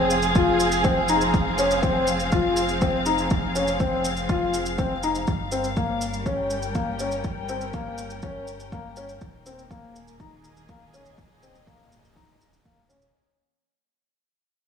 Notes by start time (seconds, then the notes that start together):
Already playing: F1 F3 C4 G#4 F5
0.10 shaker
0.22 shaker
0.35 F4, kick, shaker
0.60 shaker
0.72 shaker
0.84 C4, kick, shaker
1.08 D#4, shaker
1.21 shaker
1.34 kick, shaker
1.58 C#4, shaker
1.71 shaker
1.83 C4, kick, shaker
2.07 shaker
2.20 shaker
2.32 F4, kick, shaker
2.56 shaker
2.69 shaker
2.81 C4, kick, shaker
3.06 D#4, shaker
3.18 shaker
3.30 kick, shaker
3.55 C#4, shaker
3.68 shaker
3.80 C4, kick, shaker
4.05 shaker
4.17 shaker
4.29 F4, kick, shaker
4.54 shaker
4.66 shaker
4.78 C4, kick, shaker
5.03 D#4, shaker
5.15 shaker
5.27 G1 G3, kick, shaker
5.52 C4, shaker
5.63 C#4 A#4, shaker
5.77 A#3, kick, shaker
6.01 shaker
6.14 shaker
6.26 C#4, kick, shaker
6.31 G5
6.50 shaker
6.62 shaker
6.75 A#3, kick, shaker
6.99 C#4, shaker
7.12 shaker
7.24 kick, shaker
7.49 C4, shaker
7.61 shaker
7.73 A#3, kick, shaker
7.98 shaker
8.10 shaker
8.22 C#4, kick, shaker
8.47 shaker
8.60 shaker
8.72 A#3, kick, shaker
8.96 C#4, shaker
9.09 shaker
9.21 D#1 D#3, kick, shaker
9.32 A#3
9.46 C4, shaker
9.59 shaker
9.70 A#3, kick, shaker
9.80 G#4
9.96 shaker
10.08 shaker
10.20 D#4, kick, shaker
10.36 D#5
10.44 shaker
10.57 shaker
10.69 A#3, kick, shaker
10.94 C#4, shaker
11.06 shaker
11.18 kick, shaker
11.43 C4, shaker
11.55 shaker
11.67 A#3, kick, shaker
11.92 shaker
12.05 shaker
12.16 D#4, kick, shaker
12.41 shaker
12.53 shaker
12.65 A#3, kick, shaker
12.89 C#4, shaker
13.02 shaker